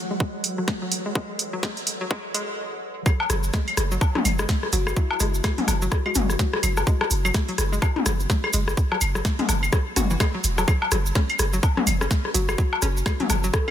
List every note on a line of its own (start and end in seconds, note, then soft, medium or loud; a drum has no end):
0.00 2.58 E3 medium
0.00 2.58 F#3 medium
0.00 2.58 F#4 medium
0.00 2.58 A4 medium
0.00 2.58 C#5 medium
0.00 2.58 F#5 medium
0.11 0.17 G#3 medium
0.20 0.29 G#3 medium
0.20 kick loud
0.44 open hi-hat medium
0.58 0.62 F#3 medium
0.68 kick loud
0.68 snare medium
0.82 0.86 F#3 medium
0.92 open hi-hat loud
1.06 1.12 G#3 medium
1.15 1.24 G#3 medium
1.15 kick loud
1.39 open hi-hat medium
1.53 1.57 F#3 medium
1.63 1.72 G#3 medium
1.63 kick loud
1.63 snare medium
1.77 open hi-hat soft
1.87 open hi-hat medium
2.01 2.05 F#3 medium
2.11 2.19 G#3 medium
2.11 kick loud
2.34 2.43 G#3 medium
2.34 open hi-hat loud
3.06 3.12 F#3 medium
3.06 kick loud
3.06 cross-stick soft
3.06 cabasa soft
3.06 claves medium
3.20 low woodblock medium
3.30 3.50 F#1 loud
3.30 3.36 F#3 medium
3.30 cross-stick medium
3.30 open hi-hat medium
3.30 cabasa medium
3.43 cabasa medium
3.53 3.62 G#3 medium
3.53 kick loud
3.53 cross-stick soft
3.53 snare loud
3.53 cabasa soft
3.68 open hi-hat soft
3.68 claves medium
3.77 3.98 F#1 loud
3.77 cross-stick medium
3.77 open hi-hat loud
3.77 cabasa medium
3.91 3.96 F#3 medium
3.91 cabasa medium
4.01 kick loud
4.01 cabasa soft
4.01 low woodblock medium
4.15 4.19 F#3 medium
4.15 cross-stick soft
4.15 mid tom medium
4.25 4.45 F#1 medium
4.25 open hi-hat loud
4.25 cabasa medium
4.25 claves medium
4.39 4.45 G#3 medium
4.39 cross-stick medium
4.39 cabasa soft
4.49 kick loud
4.49 snare loud
4.49 cabasa soft
4.63 cross-stick soft
4.73 4.93 F#1 loud
4.73 4.79 F#3 medium
4.73 4.82 F#4 medium
4.73 open hi-hat medium
4.73 cabasa medium
4.87 4.93 F#4 medium
4.87 cross-stick medium
4.87 cabasa soft
4.87 claves medium
4.96 5.02 F#3 medium
4.96 5.16 E4 loud
4.96 kick loud
4.96 cabasa soft
5.11 low woodblock medium
5.20 5.41 F#1 loud
5.20 5.29 G#3 medium
5.20 cross-stick soft
5.20 open hi-hat medium
5.20 cabasa medium
5.34 cabasa medium
5.44 kick loud
5.44 cross-stick medium
5.44 snare loud
5.44 cabasa soft
5.44 claves medium
5.58 5.62 F#3 medium
5.58 open hi-hat soft
5.58 mid tom medium
5.68 5.88 F#1 medium
5.68 cross-stick soft
5.68 open hi-hat medium
5.68 cabasa medium
5.68 low woodblock medium
5.82 5.86 F#3 medium
5.82 cabasa medium
5.92 kick loud
5.92 cross-stick medium
5.92 cabasa soft
6.06 6.12 G#3 medium
6.06 6.12 F#4 medium
6.06 claves medium
6.15 6.36 F#1 medium
6.15 6.25 F#4 medium
6.15 open hi-hat loud
6.15 mid tom medium
6.15 cabasa medium
6.30 cross-stick soft
6.30 cabasa medium
6.39 6.45 F#3 medium
6.39 kick loud
6.39 snare medium
6.39 cabasa soft
6.53 cross-stick medium
6.63 6.83 F#1 loud
6.63 6.69 F#3 medium
6.63 open hi-hat medium
6.63 cabasa loud
6.63 claves medium
6.77 cross-stick soft
6.77 cabasa medium
6.77 low woodblock medium
6.87 6.96 G#3 medium
6.87 kick loud
6.87 cabasa soft
7.01 cross-stick medium
7.01 low woodblock medium
7.11 7.31 F#1 loud
7.11 open hi-hat medium
7.11 cabasa loud
7.25 7.29 F#3 medium
7.25 cabasa medium
7.25 claves medium
7.34 kick loud
7.34 cross-stick soft
7.34 snare loud
7.34 cabasa soft
7.49 7.53 F#3 medium
7.49 open hi-hat soft
7.58 7.79 F#1 medium
7.58 cross-stick medium
7.58 open hi-hat loud
7.58 cabasa medium
7.72 7.79 G#3 medium
7.72 cabasa medium
7.82 kick loud
7.82 cross-stick soft
7.82 cabasa soft
7.82 claves medium
7.82 low woodblock medium
7.96 mid tom medium
8.06 8.26 F#1 medium
8.06 8.12 F#3 medium
8.06 cross-stick medium
8.06 open hi-hat loud
8.06 cabasa medium
8.20 cabasa medium
8.30 8.36 F#3 medium
8.30 kick loud
8.30 snare medium
8.30 cabasa soft
8.44 cross-stick soft
8.44 claves medium
8.53 8.74 F#1 loud
8.53 8.62 G#3 medium
8.53 open hi-hat loud
8.53 cabasa loud
8.68 cross-stick medium
8.68 cabasa medium
8.77 kick loud
8.77 cabasa soft
8.91 8.96 F#3 medium
8.91 cross-stick soft
8.91 low woodblock medium
9.01 9.22 F#1 loud
9.01 open hi-hat medium
9.01 cabasa loud
9.01 claves medium
9.15 9.19 F#3 medium
9.15 cross-stick medium
9.15 cabasa medium
9.25 kick loud
9.25 snare loud
9.25 cabasa soft
9.39 9.45 G#3 medium
9.39 open hi-hat soft
9.39 mid tom medium
9.49 9.69 F#1 loud
9.49 cross-stick soft
9.49 open hi-hat medium
9.49 cabasa medium
9.49 low woodblock medium
9.63 cabasa medium
9.63 claves medium
9.73 9.79 F#3 medium
9.73 kick loud
9.73 cross-stick medium
9.73 cabasa soft
9.96 10.17 F#1 medium
9.96 10.02 F#4 loud
9.96 cross-stick soft
9.96 open hi-hat loud
9.96 mid tom medium
9.96 cabasa loud
10.10 10.15 E3 medium
10.10 cabasa medium
10.20 10.24 G#3 medium
10.20 kick loud
10.20 cross-stick medium
10.20 snare medium
10.20 cabasa soft
10.20 claves medium
10.34 10.38 F#3 medium
10.44 10.64 E1 medium
10.44 open hi-hat medium
10.44 cabasa loud
10.58 10.61 F#3 medium
10.58 cross-stick soft
10.58 cabasa medium
10.58 low woodblock medium
10.68 10.74 F#3 medium
10.68 kick loud
10.68 cross-stick soft
10.68 cabasa soft
10.68 claves medium
10.82 low woodblock medium
10.91 11.12 F#1 loud
10.91 10.98 F#3 medium
10.91 cross-stick medium
10.91 open hi-hat medium
10.91 cabasa medium
11.06 cabasa medium
11.15 11.19 C#4 medium
11.15 kick loud
11.15 cross-stick soft
11.15 snare medium
11.15 cabasa soft
11.30 open hi-hat soft
11.30 claves medium
11.39 11.60 F#1 loud
11.39 cross-stick medium
11.39 open hi-hat loud
11.39 cabasa medium
11.53 11.57 F#3 medium
11.53 cabasa medium
11.63 kick loud
11.63 cabasa soft
11.63 low woodblock medium
11.77 11.81 F#3 medium
11.77 cross-stick soft
11.77 mid tom medium
11.87 12.07 F#1 medium
11.87 open hi-hat medium
11.87 cabasa loud
11.87 claves medium
12.01 12.03 C#4 medium
12.01 cross-stick medium
12.01 cabasa medium
12.11 kick loud
12.11 snare medium
12.11 cabasa soft
12.25 cross-stick soft
12.34 12.55 F#1 loud
12.34 12.40 F#3 medium
12.34 12.43 F#4 medium
12.34 open hi-hat loud
12.34 cabasa loud
12.49 12.55 F#4 medium
12.49 cross-stick medium
12.49 cabasa soft
12.49 claves medium
12.58 12.64 F#3 medium
12.58 kick loud
12.58 cabasa soft
12.73 low woodblock medium
12.82 13.02 F#1 loud
12.82 12.86 C#4 medium
12.82 cross-stick soft
12.82 open hi-hat medium
12.82 cabasa medium
12.97 cabasa soft
13.06 kick loud
13.06 cross-stick medium
13.06 snare medium
13.06 cabasa soft
13.06 claves medium
13.20 13.24 F#3 medium
13.20 open hi-hat soft
13.20 mid tom medium
13.30 13.50 F#1 loud
13.30 cross-stick soft
13.30 open hi-hat medium
13.30 cabasa medium
13.30 low woodblock medium
13.44 13.48 F#3 medium
13.44 cabasa medium
13.53 13.63 A4 medium
13.53 kick loud
13.53 cross-stick medium
13.53 cabasa soft